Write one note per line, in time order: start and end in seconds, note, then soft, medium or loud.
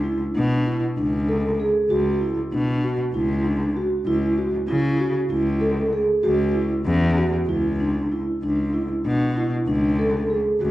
0.00 0.21 C#2 medium
0.00 0.32 E4 medium
0.35 0.83 B2 medium
0.35 0.63 D4 medium
0.66 0.94 E4 medium
0.98 1.69 C#2 medium
0.98 1.26 D4 medium
1.28 1.56 A4 medium
1.60 1.88 G#4 medium
1.90 2.38 C#2 medium
1.90 2.18 F#4 medium
2.21 2.49 E4 medium
2.52 3.00 B2 medium
2.52 2.80 D4 medium
2.84 3.12 F#4 medium
3.14 3.84 C#2 medium
3.14 3.42 E4 medium
3.45 3.73 D4 medium
3.76 4.04 F#4 medium
4.06 4.54 C#2 medium
4.06 4.35 E4 medium
4.38 4.66 F#4 medium
4.68 5.15 C#3 medium
4.68 4.96 E4 medium
5.00 5.27 F#4 medium
5.30 6.01 C#2 medium
5.30 5.58 E4 medium
5.61 5.89 A4 medium
5.93 6.20 G#4 medium
6.23 6.71 C#2 medium
6.23 6.51 F#4 medium
6.55 6.83 E4 medium
6.86 7.34 E2 loud
6.86 7.14 C#4 medium
7.17 7.45 F#4 medium
7.48 8.20 C#2 medium
7.48 7.77 E4 medium
7.80 8.09 D4 medium
8.12 8.40 E4 medium
8.43 8.91 C#2 medium
8.43 8.71 D4 medium
8.74 9.02 E4 medium
9.05 9.53 B2 medium
9.05 9.33 D4 medium
9.36 9.64 E4 medium
9.68 10.38 C#2 medium
9.68 9.96 D4 medium
9.99 10.27 A4 medium
10.30 10.58 G#4 medium
10.61 10.71 C#2 medium
10.61 10.71 F#4 medium